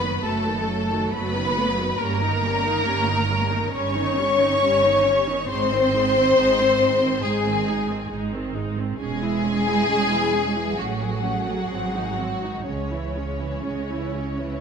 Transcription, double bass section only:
Already playing: F#1
0.24 F#1
1.13 F#1
1.99 G1
2.86 G1
3.72 G1
4.61 G1
5.50 G#1
6.39 G#1
7.25 G#1
8.12 G#1
9.00 E1
9.90 E1
10.78 A1
11.71 G#1
12.65 C#2
13.65 C#2

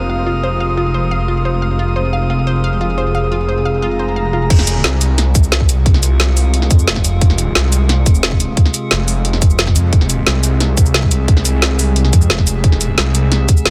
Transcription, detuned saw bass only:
Already playing: F1
4.50 F1
4.84 C2
5.35 C2
6.71 F2
6.88 F1
7.21 F1
7.55 C2
8.06 F1
8.91 F1
9.76 F2
9.93 F1
10.27 C2
10.77 C2
12.13 F2
12.30 F1
12.64 F1
12.98 C2
13.65 F1

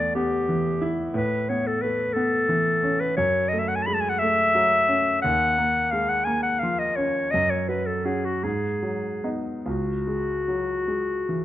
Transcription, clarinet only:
Already playing: D5
0.15 G4
1.15 B4
1.49 C#5
1.67 A4
1.82 B4
2.13 A4
3.00 B4
3.17 C#5
3.49 D#5
3.59 E5
3.68 F#5
3.76 G#5
3.82 A5
3.87 B5
3.94 A5
4.01 G#5
4.10 F#5
4.19 E5
5.22 F#5
5.91 F5
6.09 F#5
6.25 G#5
6.43 F#5
6.59 F5
6.79 D#5
6.96 C#5
7.31 D#5
7.50 C#5
7.69 B4
7.87 A4
8.05 G#4
8.26 F#4
8.44 G#4
9.65 F#4

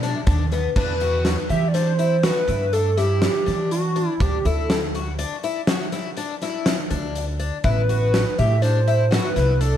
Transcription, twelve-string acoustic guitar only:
0.03 D4
0.27 D4
0.52 B3
0.77 D4
1.01 F#4
1.49 G4
1.75 D4
1.99 E4
2.23 F#4
2.48 E4
2.73 D4
2.97 E4
3.46 D4
3.96 D4
4.21 D4
4.46 E4
4.95 F#4
5.19 D4
5.44 E4
5.68 F#4
5.92 E4
6.17 D4
6.42 E4
6.91 D4
7.40 D4
7.64 E4
7.89 F#4
8.39 G4
8.62 D4
8.88 E4
9.11 F#4
9.36 E4
9.61 D4

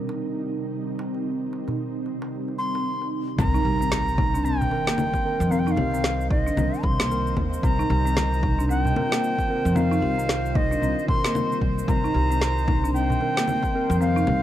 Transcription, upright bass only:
3.38 C2
3.65 C2
5.40 F2
5.77 C2
6.57 C2
6.84 C2
7.37 D#2
7.63 C2
7.90 C2
9.65 F2
10.02 C2
10.82 C2
11.62 C2
11.88 C2
12.14 C2
13.90 F2
14.27 C2

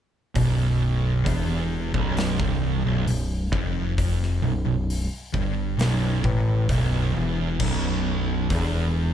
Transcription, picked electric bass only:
0.36 B0
1.26 E1
1.95 B0
2.41 C1
2.87 B0
3.09 B0
3.53 F1
4.43 B0
4.66 B0
5.34 G1
5.79 B0
6.25 A1
6.70 B0
7.17 E1
7.61 B0
8.51 E1

